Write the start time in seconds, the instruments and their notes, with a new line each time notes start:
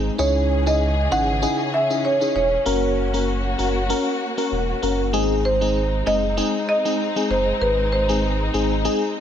Already playing: sub bass G#1, string section G#3 C4 D#4, fm electric piano G#3 C4 D#4 G#4
0.18 sub bass C#2, string section C#3 E3 C#4 G#4, fm electric piano C#4 D#4 E4 G#4, marimba C#5
0.66 fm electric piano C#4 D#4 E4 G#4, marimba D#5
1.11 sub bass G#1, fm electric piano C#4 D#4 E4 G#4, marimba F#5
1.42 fm electric piano C#4 D#4 E4 G#4
1.74 marimba E5
1.90 fm electric piano C#4 D#4 E4 G#4
2.05 marimba C#5
2.21 fm electric piano C#4 D#4 E4 G#4
2.35 sub bass E1, marimba C#5
2.66 sub bass F#1, fm electric piano A#3 C#4 F#4 A#4, string section A#3 F#4
3.13 fm electric piano A#3 C#4 F#4 A#4
3.58 sub bass F#1, fm electric piano A#3 C#4 F#4 A#4
3.89 fm electric piano A#3 C#4 F#4 A#4
4.37 fm electric piano A#3 C#4 F#4 A#4
4.52 sub bass E1
4.82 sub bass F#1, fm electric piano A#3 C#4 F#4 A#4
5.13 sub bass G#1, fm electric piano G#3 C4 D#4 G#4, string section G#3 C4 D#4
5.45 marimba C5
5.61 fm electric piano G#3 C4 D#4 G#4
6.06 sub bass F#1, fm electric piano G#3 C4 D#4 G#4, marimba D#5
6.37 fm electric piano G#3 C4 D#4 G#4
6.69 marimba D#5
6.85 fm electric piano G#3 C4 D#4 G#4
7.16 fm electric piano G#3 C4 D#4 G#4
7.30 sub bass F#1, marimba C5
7.61 sub bass G#1, marimba B4
7.92 marimba C5
8.09 fm electric piano G#3 C4 D#4 G#4
8.54 sub bass G#1, fm electric piano G#3 C4 D#4 G#4
8.85 fm electric piano G#3 C4 D#4 G#4